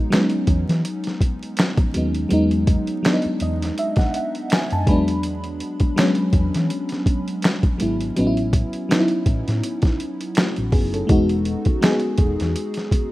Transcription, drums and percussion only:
0.12 finger snap, snare, closed hi-hat
0.30 closed hi-hat
0.47 kick, closed hi-hat
0.69 snare, closed hi-hat
0.85 closed hi-hat
1.04 snare, closed hi-hat
1.21 kick, closed hi-hat
1.43 closed hi-hat
1.57 finger snap, snare, closed hi-hat
1.77 kick, closed hi-hat
1.94 closed hi-hat
2.15 closed hi-hat
2.31 closed hi-hat
2.51 closed hi-hat
2.67 kick, closed hi-hat
2.87 closed hi-hat
3.05 finger snap, snare, closed hi-hat
3.22 closed hi-hat
3.40 closed hi-hat
3.62 snare, closed hi-hat
3.78 closed hi-hat
3.96 kick, snare, closed hi-hat
4.14 closed hi-hat
4.35 closed hi-hat
4.50 finger snap, snare, closed hi-hat
4.70 closed hi-hat
4.87 kick, closed hi-hat
5.08 closed hi-hat
5.23 closed hi-hat
5.44 closed hi-hat
5.60 closed hi-hat
5.80 kick, closed hi-hat
5.98 finger snap, snare, closed hi-hat
6.15 closed hi-hat
6.33 kick, closed hi-hat
6.54 snare, closed hi-hat
6.70 closed hi-hat
6.89 snare, closed hi-hat
7.06 kick, closed hi-hat
7.28 closed hi-hat
7.42 finger snap, snare, closed hi-hat
7.63 kick, closed hi-hat
7.80 closed hi-hat
8.01 closed hi-hat
8.16 closed hi-hat
8.37 closed hi-hat
8.53 kick, closed hi-hat
8.73 closed hi-hat
8.91 finger snap, snare, closed hi-hat
9.08 closed hi-hat
9.26 kick, closed hi-hat
9.48 snare, closed hi-hat
9.63 closed hi-hat
9.82 kick, snare, closed hi-hat
10.00 closed hi-hat
10.21 closed hi-hat
10.35 finger snap, snare, closed hi-hat
10.56 closed hi-hat
10.72 kick, open hi-hat
10.94 closed hi-hat
11.09 kick, closed hi-hat
11.29 closed hi-hat
11.45 closed hi-hat
11.65 kick, closed hi-hat
11.82 finger snap, snare, closed hi-hat
12.00 closed hi-hat
12.18 kick, closed hi-hat
12.40 snare, closed hi-hat
12.56 closed hi-hat
12.74 snare, closed hi-hat
12.91 kick, closed hi-hat

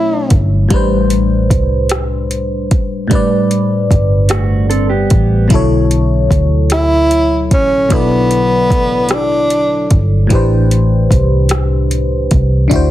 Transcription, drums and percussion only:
0.30 kick, closed hi-hat
0.70 kick, closed hi-hat
1.10 closed hi-hat
1.50 kick, closed hi-hat
1.89 cross-stick, closed hi-hat
2.31 closed hi-hat
2.71 kick, closed hi-hat
3.11 kick, closed hi-hat
3.51 closed hi-hat
3.91 kick, closed hi-hat
4.29 cross-stick, closed hi-hat
4.71 closed hi-hat
5.10 kick, closed hi-hat
5.50 kick, closed hi-hat
5.91 closed hi-hat
6.31 kick, closed hi-hat
6.70 cross-stick, closed hi-hat
7.11 closed hi-hat
7.51 kick, closed hi-hat
7.90 kick, closed hi-hat
8.31 closed hi-hat
8.70 kick, closed hi-hat
9.09 cross-stick, closed hi-hat
9.50 closed hi-hat
9.91 kick, closed hi-hat
10.30 kick, closed hi-hat
10.71 closed hi-hat
11.11 kick, closed hi-hat
11.49 cross-stick, closed hi-hat
11.91 closed hi-hat
12.31 kick, closed hi-hat
12.71 kick, closed hi-hat

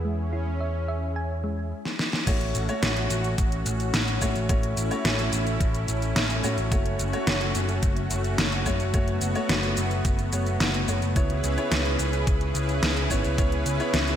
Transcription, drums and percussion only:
1.85 snare
1.99 snare
2.13 snare
2.27 kick, closed hi-hat, crash, shaker
2.41 closed hi-hat
2.55 closed hi-hat, shaker
2.69 closed hi-hat, shaker
2.83 snare, closed hi-hat, shaker
2.97 closed hi-hat
3.10 closed hi-hat, shaker
3.24 closed hi-hat, shaker
3.38 kick, closed hi-hat, shaker
3.52 closed hi-hat
3.66 closed hi-hat, shaker
3.80 closed hi-hat, shaker
3.94 snare, closed hi-hat, shaker
4.08 closed hi-hat, shaker
4.22 kick, closed hi-hat, shaker
4.36 closed hi-hat, shaker
4.49 kick, closed hi-hat, shaker
4.63 closed hi-hat
4.77 closed hi-hat, shaker
4.91 closed hi-hat, shaker
5.05 snare, closed hi-hat, shaker
5.19 closed hi-hat, shaker
5.33 closed hi-hat, shaker
5.47 closed hi-hat, shaker
5.60 kick, closed hi-hat, shaker
5.75 closed hi-hat, shaker
5.88 closed hi-hat, shaker
6.02 closed hi-hat, shaker
6.16 snare, closed hi-hat, shaker
6.30 closed hi-hat, shaker
6.44 closed hi-hat, shaker
6.58 closed hi-hat, shaker
6.72 kick, closed hi-hat, shaker
6.86 closed hi-hat
6.99 closed hi-hat, shaker
7.13 closed hi-hat, shaker
7.27 snare, closed hi-hat, shaker
7.41 closed hi-hat
7.55 closed hi-hat, shaker
7.69 closed hi-hat, shaker
7.83 kick, closed hi-hat, shaker
7.97 closed hi-hat
8.11 closed hi-hat, shaker
8.24 closed hi-hat, shaker
8.38 snare, closed hi-hat, shaker
8.52 closed hi-hat, shaker
8.66 kick, closed hi-hat, shaker
8.80 closed hi-hat, shaker
8.94 kick, closed hi-hat, shaker
9.08 closed hi-hat
9.21 closed hi-hat, shaker
9.35 closed hi-hat, shaker
9.49 snare, closed hi-hat, shaker
9.63 closed hi-hat, shaker
9.77 closed hi-hat, shaker
9.91 closed hi-hat, shaker
10.05 kick, closed hi-hat, shaker
10.19 closed hi-hat, shaker
10.33 closed hi-hat, shaker
10.47 closed hi-hat, shaker
10.60 snare, closed hi-hat, shaker
10.74 closed hi-hat, shaker
10.88 closed hi-hat, shaker
11.02 closed hi-hat, shaker
11.16 kick, closed hi-hat, shaker
11.30 closed hi-hat
11.44 closed hi-hat, shaker
11.58 closed hi-hat, shaker
11.72 snare, closed hi-hat, shaker
11.85 closed hi-hat
11.99 closed hi-hat, shaker
12.13 closed hi-hat, shaker
12.27 kick, closed hi-hat, shaker
12.41 closed hi-hat
12.55 closed hi-hat, shaker
12.69 closed hi-hat, shaker
12.83 snare, closed hi-hat, shaker
12.97 closed hi-hat, shaker
13.10 kick, closed hi-hat, shaker
13.24 closed hi-hat, shaker
13.38 kick, closed hi-hat, shaker
13.52 closed hi-hat
13.66 closed hi-hat, shaker
13.80 closed hi-hat, shaker
13.94 snare, closed hi-hat, shaker
14.08 closed hi-hat, shaker

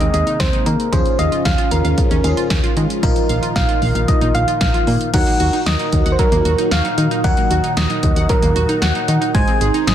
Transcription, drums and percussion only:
0.01 closed hi-hat
0.14 closed hi-hat
0.27 closed hi-hat
0.40 kick, snare, closed hi-hat
0.53 closed hi-hat
0.66 closed hi-hat
0.80 closed hi-hat
0.93 kick, closed hi-hat
1.06 closed hi-hat
1.19 closed hi-hat
1.32 closed hi-hat
1.45 kick, snare, closed hi-hat
1.58 closed hi-hat
1.71 closed hi-hat
1.85 closed hi-hat
1.98 kick, closed hi-hat
2.11 closed hi-hat
2.24 closed hi-hat
2.37 closed hi-hat
2.50 kick, snare, closed hi-hat
2.64 closed hi-hat
2.77 closed hi-hat
2.90 closed hi-hat
3.03 kick, closed hi-hat
3.16 closed hi-hat
3.29 closed hi-hat
3.43 closed hi-hat
3.56 kick, snare, closed hi-hat
3.69 closed hi-hat
3.82 open hi-hat
3.95 closed hi-hat
4.08 kick, closed hi-hat
4.21 closed hi-hat
4.35 closed hi-hat
4.48 closed hi-hat
4.61 kick, snare, closed hi-hat
4.74 closed hi-hat
4.87 open hi-hat
5.01 closed hi-hat
5.14 kick, closed hi-hat, crash
5.27 closed hi-hat
5.40 closed hi-hat
5.53 closed hi-hat
5.66 snare, closed hi-hat
5.79 closed hi-hat
5.92 kick, closed hi-hat
6.06 closed hi-hat
6.19 kick, closed hi-hat
6.32 closed hi-hat
6.45 closed hi-hat
6.58 closed hi-hat
6.71 snare, closed hi-hat
6.85 closed hi-hat
6.98 closed hi-hat
7.11 closed hi-hat
7.24 kick, closed hi-hat
7.37 closed hi-hat
7.51 closed hi-hat
7.64 closed hi-hat
7.77 snare, closed hi-hat
7.90 closed hi-hat
8.03 kick, closed hi-hat
8.16 closed hi-hat
8.29 kick, closed hi-hat
8.42 closed hi-hat
8.56 closed hi-hat
8.69 closed hi-hat
8.82 snare, closed hi-hat
8.95 closed hi-hat
9.08 closed hi-hat
9.22 closed hi-hat
9.35 kick, closed hi-hat
9.48 closed hi-hat
9.61 closed hi-hat
9.74 closed hi-hat
9.87 snare, closed hi-hat

